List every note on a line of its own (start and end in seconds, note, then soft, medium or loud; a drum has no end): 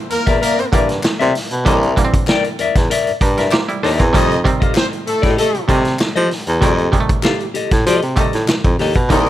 0.00 0.35 D3 medium
0.00 0.36 E3 medium
0.00 0.36 G3 medium
0.00 0.36 A#3 loud
0.10 0.17 E2 soft
0.10 0.35 A#3 medium
0.10 0.35 A#4 loud
0.10 closed hi-hat medium
0.26 0.39 E2 medium
0.26 0.40 A#4 medium
0.26 0.41 D5 medium
0.26 0.42 E5 medium
0.26 kick loud
0.26 snare soft
0.26 closed hi-hat medium
0.41 0.66 A#3 medium
0.41 0.66 A#4 loud
0.41 0.62 A#4 medium
0.41 0.58 D5 medium
0.41 0.57 E5 medium
0.41 closed hi-hat loud
0.58 0.64 G2 soft
0.58 muted clean electric guitar stroke soft
0.58 closed hi-hat soft
0.72 1.00 G2 medium
0.72 1.38 D3 medium
0.72 1.38 E3 medium
0.72 1.39 G3 medium
0.72 1.39 A#3 medium
0.72 0.89 A#4 medium
0.72 0.89 D5 medium
0.72 0.87 E5 medium
0.72 kick loud
0.72 closed hi-hat medium
0.89 muted clean electric guitar stroke soft
0.89 snare soft
0.89 closed hi-hat soft
1.03 muted clean electric guitar stroke soft
1.03 snare loud
1.03 clap medium
1.19 1.33 C3 loud
1.19 1.33 A#4 medium
1.19 1.34 D5 medium
1.19 1.35 E5 loud
1.19 closed hi-hat soft
1.34 muted clean electric guitar stroke soft
1.34 snare soft
1.34 open hi-hat medium
1.51 1.64 B2 medium
1.51 muted clean electric guitar stroke medium
1.51 closed hi-hat soft
1.65 1.93 C2 loud
1.65 1.88 D3 medium
1.65 1.88 E3 medium
1.65 1.88 G3 medium
1.65 1.88 A#3 medium
1.65 1.78 A4 medium
1.65 1.79 C#5 medium
1.65 1.80 D#5 medium
1.65 kick loud
1.65 closed hi-hat loud
1.78 1.94 A#4 medium
1.78 1.95 D5 medium
1.78 1.95 E5 medium
1.83 closed hi-hat soft
1.96 2.84 D3 medium
1.96 2.85 E3 medium
1.96 2.85 G3 medium
1.96 2.04 A#3 medium
1.96 kick medium
1.96 closed hi-hat medium
2.04 2.88 C4 loud
2.13 2.19 E2 soft
2.13 muted clean electric guitar stroke soft
2.13 kick loud
2.13 closed hi-hat medium
2.27 2.48 A#4 medium
2.27 2.45 D5 medium
2.27 2.45 G5 medium
2.27 snare loud
2.27 clap medium
2.44 muted clean electric guitar stroke medium
2.44 closed hi-hat soft
2.59 2.66 E2 soft
2.59 2.75 A#4 medium
2.59 2.76 D5 medium
2.59 2.75 E5 medium
2.59 closed hi-hat medium
2.75 2.88 E2 medium
2.75 muted clean electric guitar stroke medium
2.75 kick loud
2.75 snare soft
2.75 closed hi-hat medium
2.90 3.11 A#4 medium
2.90 3.11 D5 medium
2.90 3.11 E5 loud
2.90 closed hi-hat loud
3.07 3.13 G2 soft
3.07 closed hi-hat soft
3.21 3.48 G2 medium
3.21 3.51 D4 medium
3.21 3.36 G4 medium
3.21 3.36 A#4 medium
3.21 muted clean electric guitar stroke soft
3.21 kick loud
3.21 closed hi-hat medium
3.38 3.51 A#4 medium
3.38 3.54 A#4 medium
3.38 3.53 D5 medium
3.38 3.53 E5 medium
3.38 snare soft
3.38 closed hi-hat soft
3.52 3.68 A#3 medium
3.52 3.67 G4 medium
3.52 3.81 C5 medium
3.52 snare loud
3.52 clap medium
3.69 3.82 G3 medium
3.69 3.82 E4 medium
3.69 muted clean electric guitar stroke soft
3.69 closed hi-hat soft
3.83 3.98 D#2 medium
3.83 3.99 D4 medium
3.83 4.04 A#4 medium
3.83 4.12 C5 medium
3.83 4.01 D5 medium
3.83 3.99 E5 medium
3.83 snare soft
3.83 open hi-hat medium
3.99 4.12 E2 loud
3.99 4.29 E3 soft
3.99 4.29 C4 medium
3.99 muted clean electric guitar stroke medium
3.99 kick medium
3.99 closed hi-hat soft
4.13 4.41 F2 loud
4.13 4.36 C3 loud
4.13 4.36 D#3 medium
4.13 4.36 G3 medium
4.13 4.37 A3 loud
4.13 4.39 D#4 loud
4.13 4.35 G4 medium
4.13 4.35 A4 medium
4.13 4.39 D#5 loud
4.13 4.36 D#5 medium
4.13 kick loud
4.13 closed hi-hat loud
4.31 closed hi-hat soft
4.44 5.32 C3 medium
4.44 5.33 D#3 medium
4.44 5.33 G3 medium
4.44 5.33 C4 loud
4.44 muted clean electric guitar stroke soft
4.44 kick medium
4.44 closed hi-hat medium
4.60 4.68 A2 soft
4.60 4.73 F4 medium
4.60 4.74 G4 medium
4.60 4.75 A4 medium
4.60 4.75 D#5 medium
4.60 4.73 F5 medium
4.60 kick loud
4.60 closed hi-hat soft
4.75 4.86 C4 medium
4.75 4.86 C5 loud
4.75 muted clean electric guitar stroke soft
4.75 snare loud
4.75 clap loud
4.92 muted clean electric guitar stroke medium
4.92 closed hi-hat soft
5.07 5.14 A2 soft
5.07 5.32 A3 medium
5.07 5.32 A4 loud
5.07 closed hi-hat medium
5.22 5.36 A2 loud
5.22 5.36 G4 medium
5.22 5.37 A4 medium
5.22 5.38 D#5 medium
5.22 kick loud
5.22 snare soft
5.22 closed hi-hat soft
5.37 5.63 A3 loud
5.37 5.58 G4 medium
5.37 5.54 A4 medium
5.37 5.63 A4 loud
5.37 5.52 D#5 medium
5.37 closed hi-hat loud
5.53 5.60 C3 soft
5.53 muted clean electric guitar stroke soft
5.53 closed hi-hat soft
5.68 6.34 C3 medium
5.68 5.96 C3 loud
5.68 6.35 D#3 medium
5.68 6.35 G3 medium
5.68 6.35 A3 medium
5.68 5.85 G4 medium
5.68 5.85 A4 medium
5.68 5.84 D#5 medium
5.68 kick loud
5.68 closed hi-hat medium
5.85 muted clean electric guitar stroke medium
5.85 snare soft
5.85 closed hi-hat soft
5.99 muted clean electric guitar stroke soft
5.99 snare loud
5.99 clap medium
6.16 6.29 F3 loud
6.16 6.28 G4 medium
6.16 6.30 A4 medium
6.16 6.30 D#5 medium
6.16 closed hi-hat soft
6.30 muted clean electric guitar stroke soft
6.30 snare soft
6.30 open hi-hat medium
6.47 6.60 E2 loud
6.47 muted clean electric guitar stroke soft
6.47 closed hi-hat soft
6.61 6.89 F2 loud
6.61 6.84 C3 medium
6.61 6.84 D#3 medium
6.61 6.84 G3 medium
6.61 6.85 A3 loud
6.61 6.73 F#4 medium
6.61 6.74 G#4 medium
6.61 6.75 D5 medium
6.61 kick loud
6.61 closed hi-hat loud
6.73 6.90 G4 medium
6.73 6.91 A4 medium
6.73 6.91 D#5 medium
6.78 closed hi-hat soft
6.92 7.80 C3 medium
6.92 7.81 D#3 medium
6.92 7.81 G3 medium
6.92 7.00 G#3 medium
6.92 kick medium
6.92 closed hi-hat medium
7.00 7.85 A3 loud
7.09 7.15 A2 soft
7.09 muted clean electric guitar stroke soft
7.09 kick loud
7.09 closed hi-hat medium
7.23 7.44 G4 medium
7.23 7.40 A4 medium
7.23 7.40 F5 loud
7.23 snare loud
7.23 clap loud
7.40 muted clean electric guitar stroke soft
7.40 closed hi-hat soft
7.54 7.62 A2 soft
7.54 7.71 G4 medium
7.54 7.72 A4 medium
7.54 7.71 D#5 medium
7.54 closed hi-hat medium
7.71 7.84 A2 loud
7.71 muted clean electric guitar stroke soft
7.71 kick loud
7.71 snare soft
7.71 closed hi-hat medium
7.86 8.00 F3 loud
7.86 8.07 G4 medium
7.86 8.04 A4 loud
7.86 8.03 D#5 loud
7.86 closed hi-hat loud
8.02 8.15 C3 medium
8.02 muted clean electric guitar stroke soft
8.02 closed hi-hat soft
8.16 8.82 C3 medium
8.16 8.83 D#3 medium
8.16 8.83 G3 medium
8.16 8.83 A3 medium
8.16 8.34 G4 medium
8.16 8.35 A4 medium
8.16 kick loud
8.16 clap medium
8.16 closed hi-hat medium
8.20 8.34 D#5 medium
8.33 8.46 A2 medium
8.33 muted clean electric guitar stroke medium
8.33 snare soft
8.33 closed hi-hat soft
8.48 muted clean electric guitar stroke soft
8.48 snare loud
8.48 clap loud
8.64 8.77 F2 medium
8.64 muted clean electric guitar stroke soft
8.64 kick loud
8.64 closed hi-hat soft
8.79 8.94 D#2 medium
8.79 9.00 G4 medium
8.79 8.97 A4 medium
8.79 8.96 D#5 medium
8.79 snare soft
8.79 open hi-hat medium
8.95 9.08 B2 medium
8.95 muted clean electric guitar stroke soft
8.95 kick medium
8.95 closed hi-hat soft
9.09 9.29 C2 loud
9.09 9.29 D3 medium
9.09 9.29 E3 medium
9.09 9.29 G3 medium
9.09 9.29 A#3 loud
9.09 9.29 D#4 loud
9.09 9.29 E4 medium
9.09 9.29 A#4 medium
9.09 9.29 D5 medium
9.09 9.29 D#5 loud
9.09 kick loud
9.09 closed hi-hat loud
9.26 closed hi-hat soft